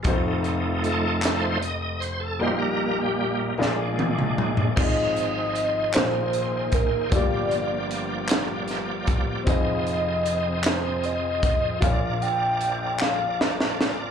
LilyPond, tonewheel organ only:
<<
  \new Staff \with { instrumentName = "Tonewheel organ" } { \time 6/8 \key f \dorian \tempo 4. = 51 r4 a'8. c''16 ees''16 ees''16 c''16 a'16 | c''16 bes'16 bes'16 g'8 r4. r16 | <aes' c''>2. | <g' d''>2. |
<aes' ees''>2. | <bes' d''>2. | }
  \new Staff \with { instrumentName = "Tonewheel organ" } { \time 6/8 \key f \dorian << { <f a ees'>4. <f a ees'>8 r4 | <bes, g bes>4. <bes, aes d'>4. | ees'4. bes4.~ | bes2. |
c'2. | d'2. | } \\ { r2. | r2. | f4. ees4. | f2.~ |
f2.~ | f2. | } >> }
>>